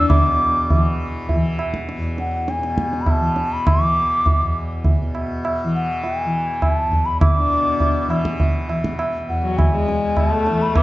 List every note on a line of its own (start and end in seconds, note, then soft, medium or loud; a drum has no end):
0.00 1.97 E2 medium
0.00 0.11 B2 medium
0.00 0.73 E3 medium
0.00 0.24 D4 medium
0.09 2.58 B2 medium
0.09 0.95 D6 medium
0.09 tabla na medium
0.09 tabla ge medium
0.70 1.34 E3 medium
0.70 tabla tin medium
0.70 tabla ge medium
1.29 tabla tin medium
1.29 tabla ge medium
1.34 3.19 E3 medium
1.59 tabla na medium
1.74 tabla ke medium
1.89 tabla te medium
1.97 4.41 E2 medium
2.18 2.52 F#5 medium
2.18 tabla te medium
2.48 3.03 G#5 medium
2.48 tabla te medium
2.59 5.01 B2 medium
2.63 tabla te medium
2.78 tabla ke medium
2.93 tabla te medium
3.01 3.12 B5 medium
3.06 3.55 A5 medium
3.06 tabla na medium
3.06 tabla ge medium
3.19 3.79 E3 medium
3.36 tabla te medium
3.53 3.69 B5 medium
3.67 4.57 D6 loud
3.67 tabla na loud
3.67 tabla ge medium
3.79 5.64 E3 medium
4.26 tabla tin medium
4.26 tabla ge medium
4.41 6.86 E2 medium
4.84 tabla tin medium
4.84 tabla ge medium
5.02 7.46 B2 medium
5.15 tabla na medium
5.45 tabla na medium
5.64 6.25 E3 medium
5.75 6.06 F#5 medium
6.04 6.19 G5 medium
6.04 tabla tin medium
6.19 6.62 G#5 medium
6.25 8.08 E3 medium
6.62 6.74 G#5 medium
6.62 tabla na medium
6.62 tabla ge medium
6.74 7.07 A5 medium
6.86 9.28 E2 medium
6.92 tabla ge medium
7.06 7.20 B5 medium
7.21 8.06 D6 medium
7.21 tabla na loud
7.21 tabla ge medium
7.37 8.22 D4 medium
7.46 9.90 B2 medium
7.80 tabla tin medium
7.80 tabla ge medium
8.08 8.69 E3 medium
8.08 tabla na medium
8.25 tabla ke medium
8.40 tabla tin medium
8.40 tabla ge medium
8.69 10.50 E3 medium
8.69 tabla na medium
8.84 tabla ke medium
8.99 tabla na medium
9.29 10.83 E2 medium
9.29 9.59 F#5 medium
9.43 9.71 F#3 soft
9.57 10.17 G#5 medium
9.57 tabla na medium
9.57 tabla ge medium
9.73 10.33 G#3 medium
9.88 10.83 B2 soft
9.88 tabla te medium
10.17 10.28 G#5 medium
10.17 tabla na medium
10.17 tabla ge medium
10.28 10.78 A3 medium
10.28 10.64 A5 medium
10.47 10.83 E3 medium
10.47 tabla te medium
10.62 10.76 B5 loud
10.75 10.83 B3 medium
10.75 10.83 D6 loud
10.75 tabla na medium
10.75 tabla ge medium